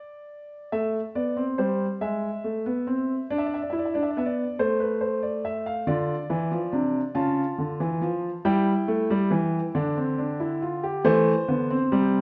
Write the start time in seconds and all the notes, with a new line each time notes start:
Already playing: D5
0.72 A3 E5
1.15 B3 D5
1.37 C4
1.58 G3 C5
2.01 G#3 E5
2.44 A3
2.66 B3
2.87 C4
3.30 D4 D5
3.38 E5
3.46 D5
3.54 E5
3.62 D5
3.70 E4 E5
3.79 D5
3.85 E5
3.94 D4 D5
4.03 E5
4.11 D5
4.17 B3 E5
4.26 D5
4.59 A3 C5
4.80 B4
5.01 C5
5.23 D5
5.45 E5
5.66 F5
5.87 D3 F4 D5
6.30 E3 E4
6.51 F3
6.72 C3 D4
7.15 C#3 F4 A5
7.58 D3
7.80 E3
8.01 F3
8.45 G3 E4 G5
8.88 A3
9.10 G3
9.31 E3
9.75 D3 D4
9.97 C4
10.18 D4
10.40 E4
10.62 F4
10.83 G4
11.04 E3 A3 C5
11.48 D3 B3
11.70 C4
11.92 C3 G3